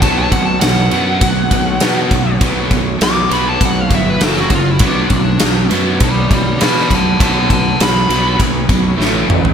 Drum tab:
RD |x-x-x-x-x-x-x-x-|x-x-x-x-x-x-x-x-|x-x-x-x-x-x-x-x-|x-x-x-x-x-x-----|
SD |----o-------o---|----o-------oo--|----o-------oo--|----o-------o---|
T2 |----------------|----------------|----------------|--------------o-|
FT |----------------|----------------|----------------|---------------o|
BD |o-o-----o-o---o-|o-o-----o-o---o-|o-o-----o-o---o-|o-o-----o-o-----|